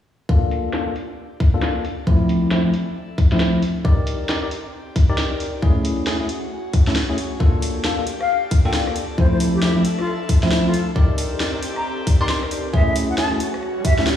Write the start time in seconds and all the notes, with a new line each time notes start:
0.29 A#3 D4 F4 G4 A4, kick
0.45 D5
0.51 open hi-hat
0.73 A#3 D4 F4 A4, snare
0.87 A#3 D4 F4 A4
0.96 A5, open hi-hat
1.40 kick, open hi-hat
1.54 A#3 D4 F4 A4
1.62 snare
1.85 D4, open hi-hat
1.99 A4
2.07 F3 A3 C4 E4, kick
2.29 open hi-hat
2.51 F3 A3 C4 E4, snare
2.65 F3 A3 C4 E4 E5
2.74 open hi-hat
3.18 kick, open hi-hat
3.32 F3 A3 C4 E4, snare
3.40 snare
3.62 C4, open hi-hat
3.85 D#4 G4 A#4 D5, kick
4.07 open hi-hat
4.25 D#4 G4 A#4 D5, snare
4.43 D#4 G4 A#4 D5
4.48 D5, open hi-hat
4.96 kick, open hi-hat
5.10 D#4 G4 A#4 D5
5.18 snare
5.40 open hi-hat
5.62 A3 C#4 E4 F#4 G#4, kick
5.85 open hi-hat
6.07 A3 C#4 E4 G#4, snare
6.21 A3 C#4 E4 G#4
6.29 C#5, open hi-hat
6.45 G#5
6.73 kick, open hi-hat
6.87 A3 C#4 E4 A4, snare
6.96 snare
7.10 A3 C#4 E4 G#4
7.18 open hi-hat
7.40 A#3 D4 F4 G4 A4 A5, kick
7.62 open hi-hat
7.84 A#3 D4 F4 A4 A5, snare
7.99 A#3 D4 F4 A4
8.07 D5, open hi-hat
8.21 F5, cross-stick
8.51 kick, open hi-hat
8.65 A#3 D4 F4 A4 G5
8.73 G5, snare
8.87 cross-stick
8.96 D4, open hi-hat
9.18 F3 A3 C4 E4 A4 C5, kick
9.32 C5 E5
9.40 open hi-hat
9.55 G4
9.62 F3 A3 C4 E4 G4, snare
9.76 F3 A3 C4 E4
9.85 open hi-hat
9.99 F4, cross-stick
10.07 cross-stick
10.29 kick, open hi-hat
10.43 F3 A3 C4 E4, snare
10.51 snare
10.66 F4
10.73 C4, open hi-hat
10.96 D#4 G4 A#4 D5, kick
11.18 open hi-hat
11.40 D#4 G4 A#4 D5, snare
11.54 D#4 G4 A#4 D5
11.63 open hi-hat
11.76 A#5, cross-stick
12.07 kick, open hi-hat
12.21 D#4 G4 A#4 D5 C6
12.29 C6, snare
12.43 cross-stick
12.51 open hi-hat
12.73 A3 C#4 E4 F#4 G#4 E5, kick
12.88 E5
12.96 open hi-hat
13.10 C#5 F#5
13.18 A3 C#4 E4 G#4 A5, snare
13.32 A3 C#4 E4 G#4
13.40 open hi-hat
13.54 cross-stick
13.62 cross-stick, swell
13.85 E5, kick, open hi-hat
13.98 A3 C#4 E4 A4 E5, snare
14.07 snare